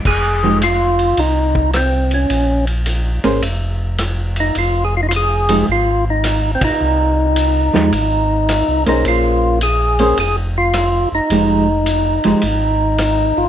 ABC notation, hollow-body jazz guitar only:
X:1
M:4/4
L:1/8
Q:"Swing" 1/4=107
K:Fm
V:1 name="Hollow-body jazz guitar"
z [F,A,EG] z6 | z3 [B,DAc] z4 | z3 [F,A,EG] z4 | z3 [F,A,EG] z3 [B,DAc]- |
[B,DAc]2 z [B,DAc] z4 | [F,A,EG] z2 [F,A,EG] z4 |]